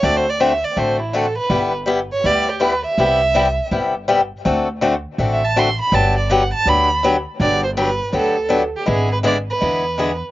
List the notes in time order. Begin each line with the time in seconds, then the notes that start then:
0.03 D2 D3 A3 C4 F#4 A4 D5
0.17 C5
0.29 D5
0.40 D3 A3 C4 F#4 A4 E5
0.64 D5
0.76 A1 D3 A3 C4 F#4 A4 C5
1.01 E4
1.13 D3 A3 C4 F#4 A4
1.38 B4
1.50 G1 G3 B3 E4 G4
1.86 G3 B3 E4 G4
2.12 C#5
2.24 D2 G3 B3 E4 G4 D5
2.51 G4
2.60 G3 B3 E4 G4 B4
2.85 E5
2.98 C2 C3 G3 B3 E4 G4
3.34 C3 G3 B3 E4 G4
3.71 G1 C3 G3 B3 E4 G4
4.08 C3 G3 B3 E4 G4
4.45 D2 D3 A3 C4 F#4 A4
4.81 D3 A3 C4 F#4 A4
5.18 A1 D3 A3 C4 F#4 A4
5.32 E5
5.45 A5
5.56 D3 A3 C4 F#4 A4 C6
5.81 B5
5.92 G1 D3 F#3 B3 D4 G4 A5
6.18 D5
6.30 D3 F#3 B3 D4 G4 F#5
6.54 A5
6.66 D2 D3 F#3 B3 D4 G4 B5
7.03 D3 F#3 B3 D4 G4
7.40 G1 D3 F#3 B3 D4 G4 D5
7.64 C5
7.77 D3 F#3 B3 D4 G4 B4
8.12 D2 D3 F#3 B3 D4 G4 A4
8.49 D3 F#3 B3 D4 G4
8.76 G4
8.86 G#1 D3 G#3 B3 E4 G#4
8.90 G#4
9.12 B4
9.23 D3 G#3 B3 E4 G#4 D5
9.50 B4
9.61 E2 D3 G#3 B3 E4 G#4
9.98 D3 G#3 B3 E4 G#4